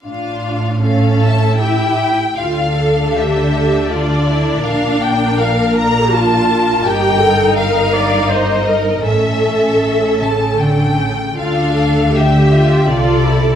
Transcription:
<<
  \new Staff \with { instrumentName = "Violin section" } { \time 3/4 \key d \minor \tempo 4 = 80 << { r4. a''8 g''4 | f''4 e''4 d''4 | f''8 g''8 f''8 bes''8 a''4 | g''4 f''4 ees''4 |
e''4. a''8 g''4 | f''4 e''4 d''4 | } \\ { f''4 f''8 e''8 e''8. r16 | r2. | r2. | r2. |
r2. | r2. | } >> }
  \new Staff \with { instrumentName = "Viola section" } { \time 3/4 \key d \minor d'4 cis'4 e'8. r16 | f'8 a'8 g'4 f'8 e'8 | d'4 bes'4 f'4 | g'8 a'8 bes'8 d''8 c''8 bes'8 |
a'2~ a'8 r8 | f'8 a'8 g'4 f'8 a'8 | }
  \new Staff \with { instrumentName = "Violin section" } { \time 3/4 \key d \minor << { f'4 a'4 g'8. r16 | a'2. | bes'2.~ | bes'2. |
a'2~ a'8. r16 | a'4 g'4 a'4 | } \\ { r2. | d'2.~ | d'2. | ees'2. |
cis'2~ cis'8. r16 | d'4 g'8 f'8 f'8 e'8 | } >> }
  \new Staff \with { instrumentName = "Cello section" } { \clef bass \time 3/4 \key d \minor a,2~ a,8. r16 | d2. | bes,2. | g,2. |
a,4 a,8 cis8 d8 cis8 | d2 c4 | }
  \new Staff \with { instrumentName = "Double bass section" } { \clef bass \time 3/4 \key d \minor a,,2~ a,,8. r16 | d,2. | bes,,2. | g,,2. |
a,,2~ a,,8. r16 | d,2 c,4 | }
>>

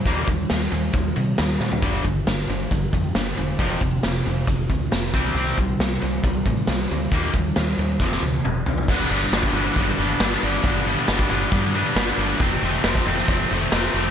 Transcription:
<<
  \new Staff \with { instrumentName = "Overdriven electric guitar" } { \clef bass \time 4/4 \key g \mixolydian \tempo 4 = 136 <ees g bes>8 <ees g>8 <ees g>8 <ees g>8 <ees g>8 <ees g>8 <ees g>8 <ees g>8 | <g, d g>8 <g, d>8 <g, d>8 <g, d>8 <g, d>8 <g, d>8 <g, d>8 <g, d>8 | <f, c f>8 <f, c>8 <f, c>8 <f, c>8 <f, c>8 <f, c>8 <f, c>8 <c g c'>8 | <c g c'>8 <c g>8 <c g>8 <c g>8 <c g>8 <c g>8 <c g>8 <c g>8 |
<ees g bes>8 <ees g>8 <ees g>8 <ees g>8 <f, c f>8 <f, c>8 <f, c>8 <f, c>8 | <g, d g b d'>8 <g, d g b d'>8 <g, d g b d'>8 <g, d g b d'>8 <g, d g b d'>8 <g, d g b d'>8 <g, d g b d'>8 <g, d g b d'>8 | <g, d g b d'>8 <g, d g b d'>8 <g, d g b d'>8 <g, d g b d'>8 <g, d g b d'>8 <g, d g b d'>8 <g, d g b d'>8 <g, d g b d'>8 | <f, c f a c'>8 <f, c f a c'>8 <f, c f a c'>8 <f, c f a c'>8 <f, c f a c'>8 <f, c f a c'>8 <f, c f a c'>8 <f, c f a c'>8 | }
  \new Staff \with { instrumentName = "Fingered electric bass" } { \clef bass \time 4/4 \key g \mixolydian ees,8 ees,8 ees,8 ees,8 ees,8 c8 ees,8 bes,8 | g,,8 g,,8 g,,8 g,,8 g,,8 f,8 g,,8 e,,8 | f,,8 f,,8 f,,8 f,,8 f,,8 d,8 f,,8 c,8 | c,8 c,8 c,8 c,8 c,8 a,8 c,8 d,8 |
ees,8 ees,8 ees,8 ees,8 f,,8 d,8 f,,8 c,8 | g,,8 g,,8 g,,8 g,,8 g,,8 g,,8 g,,8 g,,8 | g,,4 g,,8 g,,8 g,4 g,,8 g,,8 | f,,8 f,,8 f,,8 f,,8 f,,8 f,,8 f,,8 f,,8 | }
  \new DrumStaff \with { instrumentName = "Drums" } \drummode { \time 4/4 <hh bd>8 <hh bd>8 <hh sn>8 hh8 <hh bd>8 hh8 <hh sn>8 sn16 tomfh16 | <hh bd>8 <hh bd>8 <hh sn>8 hh8 <hh bd>8 <hh bd>8 <hh sn>8 hh8 | <hh bd>8 <hh bd>8 <hh sn>8 hh8 <hh bd>8 <hh bd>8 <hh sn>8 <hh bd>8 | hh8 <hh bd>8 <hh sn>8 hh8 <hh bd>8 <hh bd>8 <hh sn>8 hh8 |
<hh bd>8 <hh bd>8 <hh sn>8 hh8 <bd sn>16 sn8 tommh16 toml8 tomfh16 tomfh16 | <cymc bd>8 hh8 <hh sn>16 bd16 hh8 <hh bd>8 hh8 <hh sn>8 hh8 | <hh bd>8 hh16 hh16 <hh sn>16 bd16 hh8 <hh bd>8 hh16 hh16 <hh sn>8 hh16 hh16 | <hh bd>8 hh8 <hh sn>16 bd16 hh16 sn16 <hh bd>8 hh8 <hh sn>8 hh8 | }
>>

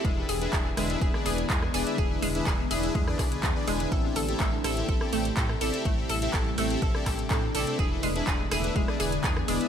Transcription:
<<
  \new Staff \with { instrumentName = "Synth arpeggio sound" } { \time 4/4 \key a \minor \tempo 4 = 124 <gis gis'>8 <gis' gis''>8 <gis' gis''>8 <gis gis'>8 <gis' gis''>8 <gis' gis''>8 <gis gis'>8 <gis' gis''>8 | <gis' gis''>8 <gis gis'>8 <gis' gis''>8 <gis' gis''>8 <gis gis'>8 <gis' gis''>8 <gis' gis''>8 <gis gis'>8 | <a' a''>8 <a' a''>8 <a a'>8 <a' a''>8 <a' a''>8 <a a'>8 <a' a''>8 <a' a''>8 | <a a'>8 <a' a''>8 <a' a''>8 <a a'>8 <a' a''>8 <a' a''>8 <a a'>8 <a' a''>8 |
<gis' gis''>8 <gis gis'>8 <gis' gis''>8 <gis' gis''>8 <gis gis'>8 <gis' gis''>8 <gis' gis''>8 <gis gis'>8 | }
  \new Staff \with { instrumentName = "Supersaw synth" } { \time 4/4 \key a \minor <d' e' gis' b' e''>16 <d' e' gis' b' e''>16 r16 <d' e' gis' b' e''>16 <d' e' gis' b' e''>16 r16 <d' e' gis' b' e''>16 <d' e' gis' b' e''>16 b'16 <d' e' gis' b' d''>16 <d' e' gis' b' gis''>16 r16 <d' e' gis' b' gis''>16 r16 <d' e' gis' b' d''>16 <d' e' gis' b' e''>16 | <d' gis'>16 <d' e' gis' b' e''>16 r16 <d' e' gis' b' e''>16 <d' e' gis' b'>16 r16 <d' e' gis' b' e''>16 <d' e' gis' b' e''>16 <d' e' gis' b' e''>16 <d' e' gis' b' d''>16 <d' e' gis' b' d''>16 <d' e' gis' b' gis''>8 <d' e' gis' b' d''>16 <d' e' gis' b' gis''>8 | <c' e' g' e''>16 <c' e' g' a' e''>16 r16 <c' e' g' a' e''>16 <c' e' g' a' e''>16 r16 <c' e' g' a' e''>16 <c' e' g' a' e''>16 <c' e' g' a'>16 <c' e' g' a' d''>16 <c' e' g' a' g''>16 r16 <c' e' g' a' g''>16 r16 <c' e' g' a' d''>16 <c' e' g' a' e''>16 | <c' e' g' a' e''>16 <c' e' g' a' e''>16 r16 <c' e' g' a' e''>16 <c' e' g' a' e''>16 r16 <c' e' g' a' e''>16 <c' e' g' a' e''>16 <c' a' e''>16 <c' e' g' a' d''>16 <c' e' g' a' g''>16 r16 <c' e' g' a' g''>16 r16 <c' e' g' a' d''>16 <c' e' g' a' e''>16 |
<d' e' gis' b' e''>16 <d' e' gis' b' e''>16 r16 <d' e' gis' b' e''>16 <d' b'>16 r16 <d' e' gis' b' e''>16 <d' e' gis' b' e''>16 <e' e''>16 <d' e' gis' b' d''>16 <d' e' gis' b' gis''>16 r16 <d' e' gis' b' gis''>16 r16 <d' e' gis' b' d''>16 <d' e' gis' b' e''>16 | }
  \new Staff \with { instrumentName = "Ambient pad" } { \time 4/4 \key a \minor << { e'1 | d'1 | e'1 | d'1 |
e'1 | } \\ { <d gis b>1~ | <d gis b>1 | <c g a>1~ | <c g a>1 |
<d gis b>1 | } >> }
  \new Staff \with { instrumentName = "Analog synth bass" } { \clef bass \time 4/4 \key a \minor e,,8 e,,8 e,,8 e,,8 e,,8 e,,8 e,8 e,,8 | e,,8 e,,8 e,,8 e,,8 e,8 b,,8 e,8 e,,8 | a,,8 a,,8 a,,8 a,,8 a,,8 a,,8 a,8 a,,8 | a,,8 a,,8 a,,8 a,,8 a,,8 a,,8 a,8 a,,8 |
e,,8 e,,8 e,,8 e,,8 e,,8 e,,8 e,8 e,,8 | }
  \new DrumStaff \with { instrumentName = "Drums" } \drummode { \time 4/4 <hh bd>8 <hho cymr>16 hh16 <hc hh bd>8 <hho cymr ss>16 hh16 <hh bd>16 ss16 <hho cymr>16 hh16 <hc hh bd>16 ss16 <hho cymr>16 hh16 | <hh bd>8 <hho cymr>16 hh16 <hc hh bd>8 <hho cymr>16 hh16 <hh bd>16 ss16 <hc hho bd cymr ss>16 hh16 <hc hh bd>8 <hho cymr>16 hh16 | <hh bd>8 <hho cymr>16 hh16 <hc hh bd>8 <hho cymr ss>16 hh16 <hh bd>16 ss16 <hho cymr>16 hh16 <hc hh bd>16 ss16 <hho cymr>16 hh16 | <hh bd>8 <hho cymr>16 hh16 <hc hh bd>8 <hho cymr>16 hh16 <hh bd>16 ss16 <hc hho bd cymr ss>16 hh16 <hc hh bd>8 <hho cymr>16 hh16 |
<hh bd>8 <hho cymr>16 hh16 <hc hh bd>8 <hho cymr ss>16 hh16 <hh bd>16 ss16 <hho cymr>16 hh16 <hc hh bd>16 ss16 <hho cymr>16 hh16 | }
>>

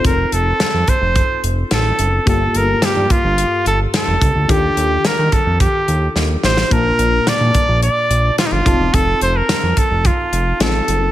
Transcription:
<<
  \new Staff \with { instrumentName = "Trumpet" } { \time 4/4 \key f \mixolydian \tempo 4 = 108 bes'8 a'4 c''4 r8 a'4 | a'8 bes'8 g'8 f'4 a'8 a'4 | g'4 bes'8 a'8 g'4 r8 c''8 | bes'4 d''4 d''4 f'32 ees'32 f'8. |
a'8 c''16 bes'8. a'8 f'4 a'4 | }
  \new Staff \with { instrumentName = "FM electric piano" } { \time 4/4 \key f \mixolydian <c' ees' f' a'>2.~ <c' ees' f' a'>8 r8 | <bes f' g' a'>1 | <d' f' g' a'>1 | <bes d' f' a''>2.~ <bes d' f' a''>8 <c' ees' f' a''>8~ |
<c' ees' f' a''>2. <c' ees' f' a'>4 | }
  \new Staff \with { instrumentName = "FM electric piano" } { \clef bass \time 4/4 \key f \mixolydian r1 | g,4. r2 r8 | ees4. r2 r8 | bes,4. r2 r8 |
r1 | }
  \new Staff \with { instrumentName = "Analog synth bass" } { \clef bass \time 4/4 \key f \mixolydian f,,8 f,,8 f,16 f,16 r16 f,,8 r16 f,,8 a,,8 ges,,8 | g,,8 g,,8 g,16 g,16 r16 g,,8 r16 g,,8 r16 f,,16 des,16 d,16 | ees,8 ees,8 ees16 ees16 r16 f,8 r16 ees,8 ees,8 a,,8 | bes,,8 bes,,8 bes,16 bes,16 r16 bes,,8 r16 bes,,8 r16 g,,16 f,,16 e,,16 |
f,,8 f,,8 f,16 f,16 r16 f,,8 r16 f,,8 a,,8 ges,,8 | }
  \new DrumStaff \with { instrumentName = "Drums" } \drummode { \time 4/4 <hh bd>8 hh8 <hh sn>8 <hh bd>8 <hh bd>8 hh8 <hh sn>8 hh8 | <hh bd>8 hh8 <hh sn>8 <hh bd>8 hh8 hh8 <hh sn>8 <hh bd>8 | <hh bd>8 hh8 <hh sn>8 <hh bd>8 <hh bd>8 hh8 sn8 sn16 sn16 | <hh bd>8 hh8 <hh sn>8 <hh bd>8 hh8 hh8 <hh sn>8 <hh bd>8 |
<hh bd>8 hh8 <hh sn>8 <hh bd>8 <hh bd>8 hh8 <hh sn>8 hh8 | }
>>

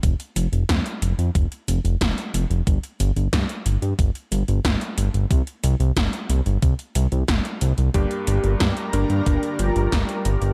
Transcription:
<<
  \new Staff \with { instrumentName = "Analog synth pad" } { \time 4/4 \key g \minor \tempo 4 = 91 r1 | r1 | r1 | <g' bes' d'' bes''>1 | }
  \new Staff \with { instrumentName = "Soft synth lead" } { \time 4/4 \key g \minor r1 | r1 | r1 | g'4. d'8 d'8 f'8 g'4 | }
  \new Staff \with { instrumentName = "Electric grand piano" } { \time 4/4 \key g \minor r1 | r1 | r1 | <g, bes d' g'>4. <g, bes d' bes'>2~ <g, bes d' bes'>8 | }
  \new Staff \with { instrumentName = "Analog synth bass" } { \clef bass \time 4/4 \key g \minor f,,16 r16 f,,16 f,,16 f,16 r16 f,,16 f,16 f,,16 r16 f,,16 f,,16 f,,16 r16 f,,16 f,,16 | g,,16 r16 g,,16 g,,16 g,16 r16 g,,16 g,16 g,,16 r16 g,,16 g,,16 g,,16 r16 g,,16 g,,16 | c,16 r16 c,16 c,16 g,,16 r16 c,16 g,,16 c,16 r16 c,16 c,16 g,,16 r16 c,16 c,16 | g,,16 r16 g,,16 g,,16 g,16 r16 g,,16 g,16 g,,16 r16 g,,16 g,,16 g,,16 r16 g,,16 g,,16 | }
  \new DrumStaff \with { instrumentName = "Drums" } \drummode { \time 4/4 <hh bd>16 hh16 hh16 hh16 <hh bd sn>16 hh16 hh16 hh16 <hh bd>16 hh16 hh16 hh16 <hh bd sn>16 hh16 hh16 hh16 | <hh bd>16 hh16 hh16 hh16 <hh bd sn>16 hh16 hh16 hh16 <hh bd>16 hh16 hh16 hh16 <hh bd sn>16 hh16 hh16 hh16 | <hh bd>16 hh16 hh16 hh16 <hh bd sn>16 hh16 hh16 hh16 <hh bd>16 hh16 hh16 hh16 <hh bd sn>16 hh16 hh16 hh16 | <hh bd>16 hh16 hh16 hh16 <hh bd sn>16 hh16 hh16 hh16 <hh bd>16 hh16 hh16 hh16 <hh bd sn>16 hh16 hh16 hh16 | }
>>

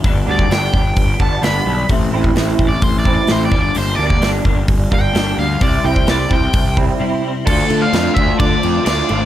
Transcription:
<<
  \new Staff \with { instrumentName = "Synth bell" } { \time 4/4 \key d \minor \tempo 4 = 129 r1 | r1 | r1 | r1 |
a''8. f'''8. e'''8 d'''4 d'''4 | }
  \new Staff \with { instrumentName = "Overdriven electric guitar" } { \time 4/4 \key d \minor r8 d''8 g''4. a''8 b''4 | r4 \tuplet 3/2 { r4 d''8 c''8 d''8 d''8 c''8 d''8 d''8 } | \tuplet 3/2 { c''8 d''8 d''8 } r4. g''4 f''8 | d''8 g''8 d''8 g''4 r4. |
a'8. f''8. e''8 d''4 d''4 | }
  \new Staff \with { instrumentName = "Clean electric guitar" } { \time 4/4 \key d \minor r8 <g b d'>8 <g b d'>8 r4 <g b d'>8 <g b d'>8 r8 | r8 <e c' e'>8 <e c' e'>8 r4 <e c' e'>8 <e c' e'>8 r8 | r8 <g bes d'>8 <g bes d'>8 r4 <g bes d'>8 <g bes d'>8 r8 | r8 <g c' e'>8 <g c' e'>8 r4 <g c' e'>8 <g c' e'>8 r8 |
<f a d' f'>4 <f a d' f'>8 <f a d' f'>8 <f a d' f'>4 <f a d' f'>8 <f a d' f'>8 | }
  \new Staff \with { instrumentName = "Clean electric guitar" } { \time 4/4 \key d \minor <g, d g b d'>8 <g b d'>8 <d g b d'>8 <g b d'>4. <g, d g b d'>8 <g b d'>8 | <a, e a c' e'>8 <a c' e'>8 <e a c' e'>8 <a c' e'>4. <a, e a c' e'>8 <g, d g bes d'>8 | <g, d g bes d'>8 <g bes d'>8 <d g bes d'>8 <g bes d'>4. <g, d g bes d'>8 <g bes d'>8 | <c g c' e'>8 <g c' e'>8 <c g c' e'>8 <g c' e'>4. <c g c' e'>8 <g c' e'>8 |
<d a d' f'>4 <d a d' f'>8 <d a d' f'>8 <d a d' f'>4 <d a d' f'>8 <d a d' f'>8 | }
  \new Staff \with { instrumentName = "Picked electric bass" } { \clef bass \time 4/4 \key d \minor g,,8 d,8 g,,8 g,,8 g,,8 g,,8 g,,8 b,,8 | a,,8 a,,8 a,,8 a,,8 a,,4 a,,8 g,,8 | g,,8 d,8 g,,8 g,,8 g,,8 g,,8 g,,8 d,8 | c,8 c,8 c,8 c,8 c,4 r4 |
d,8 d8 f,8 d,8 d8 f,8 d,8 gis,,8 | }
  \new DrumStaff \with { instrumentName = "Drums" } \drummode { \time 4/4 <hho bd>8. bd16 <hho sn>8 bd8 <hho bd>8 bd8 <hho sn>4 | <hho bd>8. bd16 <hho sn>8 bd8 <hho bd>8 bd8 <hho sn>8 bd8 | hho8. bd16 <hho sn>8 bd8 <hho bd>8 bd8 <hho sn>4 | <hho bd>8. bd16 <hho sn>8 bd8 <hho bd>8 bd8 r4 |
<cymc bd>8 cymc8 <cymc sn>8 <cymc bd>8 <cymc bd>8 cymc8 <cymc sn>8 cymc8 | }
>>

